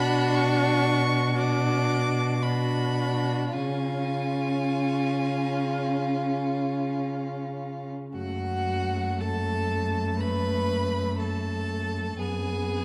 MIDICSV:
0, 0, Header, 1, 5, 480
1, 0, Start_track
1, 0, Key_signature, 3, "minor"
1, 0, Tempo, 1016949
1, 642, Tempo, 1081081
1, 1601, Time_signature, 4, 2, 24, 8
1, 1602, Tempo, 1158301
1, 3522, Tempo, 1045296
1, 4002, Tempo, 993377
1, 5764, End_track
2, 0, Start_track
2, 0, Title_t, "Violin"
2, 0, Program_c, 0, 40
2, 0, Note_on_c, 0, 83, 119
2, 163, Note_on_c, 0, 85, 114
2, 170, Note_off_c, 0, 83, 0
2, 643, Note_on_c, 0, 86, 109
2, 650, Note_off_c, 0, 85, 0
2, 1116, Note_on_c, 0, 83, 96
2, 1123, Note_off_c, 0, 86, 0
2, 1606, Note_on_c, 0, 80, 79
2, 1612, Note_off_c, 0, 83, 0
2, 3045, Note_off_c, 0, 80, 0
2, 3525, Note_on_c, 0, 78, 85
2, 4002, Note_on_c, 0, 81, 87
2, 4009, Note_off_c, 0, 78, 0
2, 4485, Note_on_c, 0, 83, 91
2, 4492, Note_off_c, 0, 81, 0
2, 4966, Note_on_c, 0, 81, 85
2, 4973, Note_off_c, 0, 83, 0
2, 5444, Note_off_c, 0, 81, 0
2, 5447, Note_on_c, 0, 80, 83
2, 5764, Note_off_c, 0, 80, 0
2, 5764, End_track
3, 0, Start_track
3, 0, Title_t, "Violin"
3, 0, Program_c, 1, 40
3, 0, Note_on_c, 1, 66, 92
3, 637, Note_off_c, 1, 66, 0
3, 640, Note_on_c, 1, 66, 77
3, 1100, Note_off_c, 1, 66, 0
3, 1109, Note_on_c, 1, 66, 69
3, 1591, Note_off_c, 1, 66, 0
3, 1600, Note_on_c, 1, 65, 68
3, 3417, Note_off_c, 1, 65, 0
3, 3520, Note_on_c, 1, 66, 79
3, 4005, Note_on_c, 1, 69, 73
3, 4013, Note_off_c, 1, 66, 0
3, 4480, Note_off_c, 1, 69, 0
3, 4483, Note_on_c, 1, 71, 79
3, 4953, Note_off_c, 1, 71, 0
3, 4964, Note_on_c, 1, 69, 73
3, 5446, Note_on_c, 1, 68, 74
3, 5454, Note_off_c, 1, 69, 0
3, 5764, Note_off_c, 1, 68, 0
3, 5764, End_track
4, 0, Start_track
4, 0, Title_t, "Viola"
4, 0, Program_c, 2, 41
4, 0, Note_on_c, 2, 62, 97
4, 639, Note_off_c, 2, 62, 0
4, 642, Note_on_c, 2, 62, 73
4, 1102, Note_off_c, 2, 62, 0
4, 1121, Note_on_c, 2, 62, 65
4, 1608, Note_on_c, 2, 61, 65
4, 1614, Note_off_c, 2, 62, 0
4, 3438, Note_off_c, 2, 61, 0
4, 3527, Note_on_c, 2, 57, 64
4, 5428, Note_off_c, 2, 57, 0
4, 5454, Note_on_c, 2, 59, 61
4, 5764, Note_off_c, 2, 59, 0
4, 5764, End_track
5, 0, Start_track
5, 0, Title_t, "Cello"
5, 0, Program_c, 3, 42
5, 0, Note_on_c, 3, 47, 84
5, 1604, Note_on_c, 3, 49, 66
5, 1610, Note_off_c, 3, 47, 0
5, 3436, Note_off_c, 3, 49, 0
5, 3523, Note_on_c, 3, 42, 64
5, 5426, Note_off_c, 3, 42, 0
5, 5447, Note_on_c, 3, 42, 57
5, 5764, Note_off_c, 3, 42, 0
5, 5764, End_track
0, 0, End_of_file